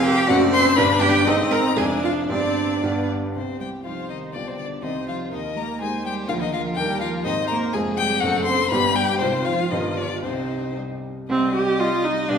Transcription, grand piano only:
Already playing: F1 F2 G#3 F4 C5
0.30 F#1 F#2 A3 D4 C5
0.77 G1 G2 B3 D4 B4
1.27 G#1 G#2 G#3 C4 C5
1.77 F1 F2 G#3 D4 G#4
2.29 G1 G2 C4 D4 G4
2.83 G1 G2 B3 D4 G4
3.35 C2 C3
3.85 G3 D#4 G4
4.35 B1 B2 G3 F4 G4
4.82 C2 C3 C4 D#4 G4
5.32 D#2 D#3
5.80 A#3 D#4 G4
6.28 D2 D3 A#3 G#4 A#4
6.77 D#2 D#3 A#3 G4 A#4
7.25 G#1 G#2 G#3 G4 C5
7.74 F1 F2 G#3 F4 C5
8.22 F#1 F#2 A3 D4 C5
8.71 G1 G2 G3 G4 D5
9.21 G#1 G#2 C4 D#4 C5
9.71 G1 G2 G3 G4 B4
10.23 C2 C3
10.77 G3 G4 D#5
11.29 C2 C3
11.79 G3 G4 D#5
12.29 B1 B2 G3 G4 F5

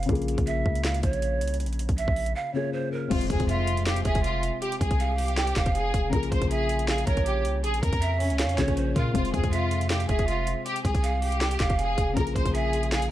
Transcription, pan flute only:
0.47 E5
0.85 F5
1.03 C#5
1.98 E5
2.35 F5
2.54 C#5
2.73 C5
2.92 A#4
3.48 E5
3.86 F5
4.05 E5
5.00 F5
5.37 G5
5.56 F5
6.51 E5
6.89 F5
7.07 C#5
8.01 E5
8.39 F5
8.58 C#5
8.77 C5
8.96 A#4
9.52 E5
9.90 F5
10.09 E5
11.03 F5
11.41 G5
11.60 F5
12.54 E5
12.92 F5

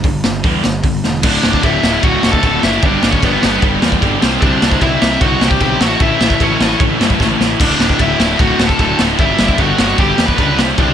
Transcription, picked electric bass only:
0.04 G1
0.25 G1
0.44 E2
0.64 G1
0.84 G1
1.05 E1
1.23 D1
1.44 D1
1.63 D1
1.83 D1
2.03 D1
2.23 D1
2.43 D1
2.63 F#1
2.83 G1
3.03 G1
3.22 G1
3.44 G1
3.62 G1
3.83 E2
4.02 G1
4.23 C2
4.42 C2
4.62 C2
4.81 C2
5.02 C2
5.21 C2
5.41 C2
5.61 B1
5.80 A1
6.00 A1
6.20 A1
6.40 A1
6.60 A1
6.80 A1
7.00 G2
7.20 A1
7.40 A1
7.60 D1
7.80 D1
7.99 D1
8.19 D1
8.39 D1
8.59 D1
8.79 D1
8.99 D1
9.19 G1
9.39 G1
9.58 G1
9.79 G1
9.98 G1
10.19 E2
10.38 C#2
10.59 C2
10.78 C2

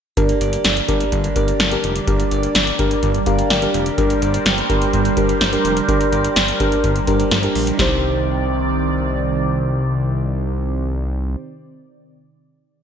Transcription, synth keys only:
0.17 D4 G4 A#4
0.88 D4 G4 A#4
1.36 D4 G4 A#4
1.72 D4 G4 A#4
2.07 D4 G4 A#4
2.79 D4 G4 A#4
3.27 D4 G4 A#4 F5
3.50 G5
3.62 D4 G4 A#4
3.98 D4 G4 A#4
4.70 D4 G4 A#4
5.17 D4 G4 A#4
5.53 D4 G4 A#4
5.89 D4 G4 A#4
6.60 D4 G4 A#4
7.08 D4 G4 A#4
7.43 D4 G4 A#4
7.77 D#4 G4 C5

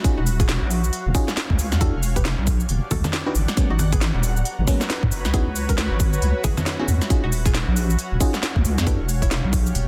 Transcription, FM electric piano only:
0.04 C#4 D#4 F4 F#4 G#4
1.15 C#4 D#4 F4 F#4 G#4
1.81 D4 E4 F#4 G4 A4
3.26 D4 E4 F#4 G4 B4
3.57 F#3 G#3 A#3 B3 C#4
4.67 F#3 G#3 A#3 B3 C#4
5.34 B3 C#4 D#4 E4 F#4
6.79 B3 C#4 D#4 E4 G#4
7.10 C#4 D#4 F4 F#4 G#4
8.21 C#4 D#4 F4 F#4 G#4
8.87 D4 E4 F#4 G4 A4

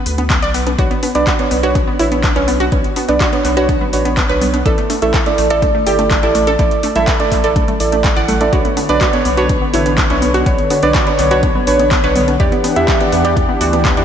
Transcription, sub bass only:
0.06 D2
0.42 B1
0.79 B1
1.15 B1
1.51 B1
2.00 A1
2.36 B1
2.72 B1
3.09 B1
3.45 B1
3.93 A1
4.29 B1
4.66 A1
5.02 A1
5.38 A1
5.87 G1
6.23 A1
6.59 A1
6.96 A1
7.32 A1
7.80 A1
8.16 A1
8.53 B1
8.89 B1
9.25 B1
9.74 A1
10.10 B1
10.46 B1
10.83 B1
11.19 B1
11.67 A1
12.04 B1
12.40 E2
12.76 E2
13.12 E2
13.61 D2
13.97 E2

